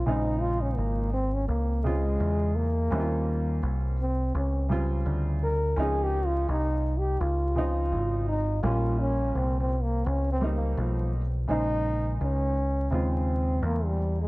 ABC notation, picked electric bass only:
X:1
M:4/4
L:1/8
Q:"Swing 16ths" 1/4=84
K:Bbdor
V:1 name="Picked electric bass" clef=bass
B,,,2 A,,,2 D,,2 =E,,2 | E,,2 C,,2 D,,2 =D,,2 | D,,2 C,,2 D,,2 A,,,2 | B,,,2 C,,2 D,,2 _C,,2 |
B,,,2 D,,2 E,,2 =E,,2 |]